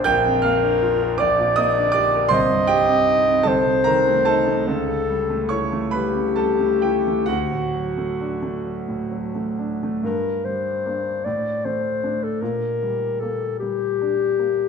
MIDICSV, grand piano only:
0, 0, Header, 1, 2, 480
1, 0, Start_track
1, 0, Tempo, 757576
1, 34, Time_signature, 6, 3, 24, 8
1, 1953, Tempo, 797872
1, 2913, Tempo, 829876
1, 3393, Tempo, 882353
1, 3873, Tempo, 913242
1, 5793, Tempo, 791557
1, 7713, Tempo, 755668
1, 8650, End_track
2, 0, Start_track
2, 0, Title_t, "Grand piano"
2, 0, Program_c, 0, 0
2, 0, Control_c, 0, 64, 127
2, 27, Note_on_c, 0, 91, 125
2, 34, Note_on_c, 0, 79, 107
2, 41, Note_on_c, 0, 34, 86
2, 44, Control_c, 0, 64, 0
2, 134, Control_c, 0, 64, 127
2, 157, Note_on_c, 0, 41, 62
2, 260, Note_off_c, 0, 79, 0
2, 265, Note_on_c, 0, 89, 99
2, 274, Note_off_c, 0, 91, 0
2, 275, Note_on_c, 0, 77, 77
2, 282, Note_on_c, 0, 58, 56
2, 351, Note_off_c, 0, 41, 0
2, 397, Note_on_c, 0, 62, 62
2, 474, Note_off_c, 0, 58, 0
2, 521, Note_on_c, 0, 65, 62
2, 591, Note_off_c, 0, 62, 0
2, 647, Note_on_c, 0, 70, 74
2, 713, Note_off_c, 0, 65, 0
2, 733, Note_off_c, 0, 77, 0
2, 742, Note_off_c, 0, 34, 0
2, 746, Note_on_c, 0, 86, 108
2, 754, Note_off_c, 0, 89, 0
2, 757, Note_on_c, 0, 74, 84
2, 763, Note_off_c, 0, 70, 0
2, 765, Note_on_c, 0, 34, 76
2, 769, Control_c, 0, 64, 0
2, 871, Control_c, 0, 64, 127
2, 881, Note_on_c, 0, 46, 58
2, 980, Note_off_c, 0, 74, 0
2, 987, Note_on_c, 0, 87, 117
2, 991, Note_off_c, 0, 86, 0
2, 993, Note_on_c, 0, 75, 84
2, 1001, Note_on_c, 0, 58, 67
2, 1070, Note_off_c, 0, 46, 0
2, 1120, Note_on_c, 0, 62, 57
2, 1190, Note_off_c, 0, 58, 0
2, 1215, Note_on_c, 0, 86, 122
2, 1217, Note_off_c, 0, 75, 0
2, 1220, Note_on_c, 0, 74, 83
2, 1229, Note_on_c, 0, 67, 69
2, 1231, Note_off_c, 0, 87, 0
2, 1309, Note_off_c, 0, 62, 0
2, 1357, Note_on_c, 0, 70, 67
2, 1423, Note_off_c, 0, 67, 0
2, 1448, Note_off_c, 0, 74, 0
2, 1448, Note_on_c, 0, 84, 117
2, 1455, Note_off_c, 0, 34, 0
2, 1457, Note_on_c, 0, 72, 92
2, 1461, Note_on_c, 0, 36, 82
2, 1463, Note_off_c, 0, 86, 0
2, 1475, Note_off_c, 0, 70, 0
2, 1483, Control_c, 0, 64, 0
2, 1583, Note_on_c, 0, 43, 57
2, 1587, Control_c, 0, 64, 127
2, 1686, Note_off_c, 0, 72, 0
2, 1694, Note_on_c, 0, 79, 111
2, 1698, Note_off_c, 0, 84, 0
2, 1703, Note_on_c, 0, 67, 84
2, 1709, Note_on_c, 0, 55, 66
2, 1779, Note_off_c, 0, 43, 0
2, 1821, Note_on_c, 0, 60, 54
2, 1904, Note_off_c, 0, 55, 0
2, 1946, Note_on_c, 0, 63, 64
2, 2019, Note_off_c, 0, 60, 0
2, 2063, Note_on_c, 0, 60, 64
2, 2139, Note_off_c, 0, 63, 0
2, 2162, Note_off_c, 0, 67, 0
2, 2163, Note_off_c, 0, 36, 0
2, 2164, Note_on_c, 0, 81, 102
2, 2165, Note_on_c, 0, 69, 78
2, 2176, Note_on_c, 0, 36, 71
2, 2182, Note_off_c, 0, 79, 0
2, 2186, Note_off_c, 0, 60, 0
2, 2203, Control_c, 0, 64, 0
2, 2299, Control_c, 0, 64, 127
2, 2302, Note_on_c, 0, 48, 56
2, 2400, Note_off_c, 0, 69, 0
2, 2409, Note_on_c, 0, 82, 107
2, 2416, Note_on_c, 0, 70, 78
2, 2417, Note_off_c, 0, 81, 0
2, 2422, Note_on_c, 0, 51, 62
2, 2499, Note_off_c, 0, 48, 0
2, 2551, Note_on_c, 0, 57, 53
2, 2619, Note_off_c, 0, 51, 0
2, 2647, Note_off_c, 0, 70, 0
2, 2656, Note_on_c, 0, 81, 108
2, 2661, Note_off_c, 0, 82, 0
2, 2664, Note_on_c, 0, 69, 83
2, 2671, Note_on_c, 0, 63, 68
2, 2743, Note_off_c, 0, 57, 0
2, 2792, Note_on_c, 0, 57, 61
2, 2864, Note_off_c, 0, 63, 0
2, 2884, Note_off_c, 0, 36, 0
2, 2909, Note_on_c, 0, 37, 78
2, 2913, Note_off_c, 0, 57, 0
2, 2925, Control_c, 0, 64, 0
2, 3029, Note_on_c, 0, 49, 50
2, 3035, Control_c, 0, 64, 127
2, 3153, Note_on_c, 0, 55, 57
2, 3221, Note_off_c, 0, 49, 0
2, 3271, Note_on_c, 0, 57, 56
2, 3346, Note_off_c, 0, 55, 0
2, 3367, Note_off_c, 0, 69, 0
2, 3381, Note_on_c, 0, 85, 94
2, 3387, Note_off_c, 0, 81, 0
2, 3390, Note_on_c, 0, 73, 72
2, 3395, Note_on_c, 0, 64, 55
2, 3464, Note_off_c, 0, 57, 0
2, 3510, Note_on_c, 0, 57, 57
2, 3583, Note_off_c, 0, 64, 0
2, 3612, Note_off_c, 0, 73, 0
2, 3613, Note_on_c, 0, 83, 96
2, 3620, Note_on_c, 0, 71, 72
2, 3625, Note_off_c, 0, 85, 0
2, 3625, Note_on_c, 0, 55, 51
2, 3702, Note_off_c, 0, 57, 0
2, 3743, Note_on_c, 0, 49, 48
2, 3822, Note_off_c, 0, 55, 0
2, 3851, Note_off_c, 0, 71, 0
2, 3855, Note_on_c, 0, 81, 85
2, 3863, Note_on_c, 0, 69, 75
2, 3864, Note_off_c, 0, 83, 0
2, 3870, Note_on_c, 0, 55, 54
2, 3940, Note_off_c, 0, 49, 0
2, 3983, Note_on_c, 0, 57, 54
2, 4061, Note_off_c, 0, 55, 0
2, 4089, Note_off_c, 0, 69, 0
2, 4098, Note_on_c, 0, 79, 86
2, 4102, Note_off_c, 0, 81, 0
2, 4103, Note_on_c, 0, 67, 68
2, 4111, Note_on_c, 0, 64, 54
2, 4178, Note_off_c, 0, 57, 0
2, 4231, Note_on_c, 0, 57, 51
2, 4302, Note_off_c, 0, 64, 0
2, 4327, Note_off_c, 0, 37, 0
2, 4329, Note_off_c, 0, 67, 0
2, 4329, Note_on_c, 0, 78, 97
2, 4336, Note_on_c, 0, 66, 69
2, 4343, Note_off_c, 0, 79, 0
2, 4345, Note_on_c, 0, 38, 70
2, 4350, Note_off_c, 0, 57, 0
2, 4362, Control_c, 0, 64, 0
2, 4447, Control_c, 0, 64, 127
2, 4464, Note_on_c, 0, 45, 45
2, 4582, Note_on_c, 0, 54, 50
2, 4659, Note_off_c, 0, 45, 0
2, 4705, Note_on_c, 0, 57, 47
2, 4778, Note_off_c, 0, 54, 0
2, 4830, Note_on_c, 0, 62, 49
2, 4899, Note_off_c, 0, 57, 0
2, 4942, Note_on_c, 0, 57, 54
2, 5019, Note_off_c, 0, 62, 0
2, 5063, Note_on_c, 0, 54, 41
2, 5134, Note_off_c, 0, 57, 0
2, 5183, Note_on_c, 0, 45, 43
2, 5257, Note_off_c, 0, 54, 0
2, 5304, Note_on_c, 0, 54, 51
2, 5381, Note_off_c, 0, 45, 0
2, 5428, Note_on_c, 0, 57, 43
2, 5506, Note_off_c, 0, 54, 0
2, 5531, Note_off_c, 0, 66, 0
2, 5548, Note_off_c, 0, 78, 0
2, 5555, Note_on_c, 0, 62, 49
2, 5630, Note_off_c, 0, 57, 0
2, 5681, Note_on_c, 0, 57, 49
2, 5747, Note_off_c, 0, 62, 0
2, 5769, Note_off_c, 0, 38, 0
2, 5788, Note_on_c, 0, 43, 60
2, 5793, Note_off_c, 0, 57, 0
2, 5803, Control_c, 0, 64, 0
2, 5930, Control_c, 0, 64, 127
2, 6043, Note_on_c, 0, 55, 40
2, 6288, Note_on_c, 0, 58, 38
2, 6288, Note_on_c, 0, 62, 42
2, 6429, Note_off_c, 0, 55, 0
2, 6498, Note_off_c, 0, 43, 0
2, 6501, Note_off_c, 0, 62, 0
2, 6502, Note_off_c, 0, 58, 0
2, 6530, Note_on_c, 0, 45, 56
2, 6532, Control_c, 0, 64, 0
2, 6632, Control_c, 0, 64, 127
2, 6768, Note_on_c, 0, 57, 45
2, 6994, Note_off_c, 0, 57, 0
2, 7003, Note_on_c, 0, 57, 43
2, 7008, Note_on_c, 0, 62, 47
2, 7214, Note_off_c, 0, 57, 0
2, 7217, Note_off_c, 0, 45, 0
2, 7217, Note_off_c, 0, 62, 0
2, 7237, Note_on_c, 0, 46, 57
2, 7248, Control_c, 0, 64, 0
2, 7335, Control_c, 0, 64, 127
2, 7482, Note_on_c, 0, 55, 44
2, 7722, Note_on_c, 0, 58, 39
2, 7866, Note_off_c, 0, 55, 0
2, 7976, Note_on_c, 0, 55, 42
2, 8113, Note_off_c, 0, 58, 0
2, 8225, Note_on_c, 0, 62, 48
2, 8356, Note_off_c, 0, 55, 0
2, 8464, Note_on_c, 0, 58, 41
2, 8590, Note_off_c, 0, 62, 0
2, 8648, Note_off_c, 0, 46, 0
2, 8650, Note_off_c, 0, 58, 0
2, 8650, End_track
0, 0, End_of_file